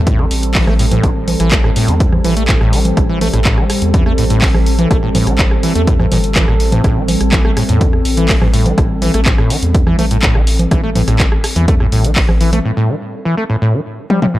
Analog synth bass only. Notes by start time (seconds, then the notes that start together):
Already playing: E2
0.31 A1
0.67 A1
1.04 A1
1.40 A1
1.88 E2
2.24 A1
2.61 A1
2.97 A1
3.33 A1
3.82 E2
4.18 A1
4.54 A1
4.91 A1
5.27 A1
5.75 E2
6.12 G1
6.48 A1
6.84 A1
7.21 A1
7.69 E2
8.05 A1
8.41 A1
8.78 A1
9.14 A1
9.62 E2
9.99 A1
10.35 A1
10.71 A1
11.08 A1
11.56 E2
11.92 A1
12.29 A1